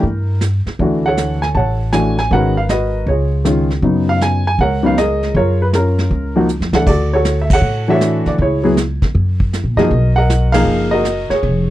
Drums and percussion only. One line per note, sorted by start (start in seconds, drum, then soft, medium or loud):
0.03 brush sweep soft
0.03 kick soft
0.41 snare medium
0.41 hi-hat pedal soft
0.67 snare soft
0.79 brush sweep soft
0.79 kick soft
1.17 snare medium
1.17 hi-hat pedal medium
1.43 snare soft
1.55 brush sweep soft
1.55 kick soft
1.93 snare soft
1.93 hi-hat pedal medium
2.18 snare soft
2.31 brush sweep soft
2.31 kick soft
2.69 snare medium
2.69 hi-hat pedal soft
3.07 brush sweep soft
3.07 kick soft
3.45 snare medium
3.45 hi-hat pedal medium
3.70 snare soft
3.83 brush sweep soft
3.83 kick soft
4.21 snare medium
4.21 hi-hat pedal soft
4.59 brush sweep soft
4.59 kick soft
4.98 snare medium
4.98 hi-hat pedal medium
5.23 snare soft
5.35 brush sweep soft
5.35 kick soft
5.73 snare medium
5.73 hi-hat pedal medium
5.99 snare soft
6.11 brush sweep soft
6.11 kick soft
6.49 hi-hat pedal medium
6.62 snare medium
6.73 snare medium
6.87 brush sweep soft
6.87 kick medium
6.87 crash medium
7.25 snare medium
7.25 hi-hat pedal medium
7.50 kick medium
7.50 crash medium
7.63 brush sweep soft
8.01 snare medium
8.01 hi-hat pedal medium
8.26 snare soft
8.39 brush sweep soft
8.39 kick soft
8.77 snare medium
8.77 hi-hat pedal medium
9.02 kick medium
9.02 snare soft
9.15 brush sweep soft
9.15 kick soft
9.40 kick medium
9.53 snare medium
9.53 hi-hat pedal medium
9.79 snare soft
9.91 brush sweep soft
9.91 kick soft
10.30 snare medium
10.30 hi-hat pedal medium
10.54 snare medium
10.54 ride medium
10.67 brush sweep medium
11.05 snare medium
11.05 hi-hat pedal medium
11.31 snare soft
11.43 brush sweep soft
11.43 kick soft